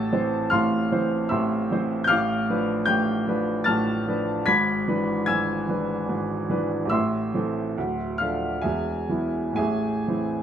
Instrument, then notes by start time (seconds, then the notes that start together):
upright piano
Already playing: A1 A2 A5 E6 A6
0.12 E3 C4 C5
0.50 A1 A2 F5 C6 F6
0.92 E3 C4 C5
1.29 A1 A2 E5 C6 E6
1.72 E3 C4 C5
2.04 F6 G6
2.09 A1 A2 F5 D6
2.50 F3 D4 B4
2.86 A1 A2 G5 G6
3.27 F3 D4 B4
3.64 A1 A2 A5 F6 A6
4.08 F3 D4 B4
4.46 G#1 G#2 B5 G#6 B6
4.88 E3 D4 B4
5.26 G#1 G#2 G#5 E6 G#6
5.69 E3 D4 B4
6.09 G#1 G#2
6.50 E3 D4 B4
6.85 A1
6.90 A2 E5 C6 E6
7.34 E3 C4 A4
7.78 D1 D2
8.18 F3 D4 A4 F5 F6
8.61 E1 E2 G#4 E5 G#5
9.09 E3 B3 E4
9.53 A2 E5 G#5
9.57 A1 G#4
10.08 E3 C4 E4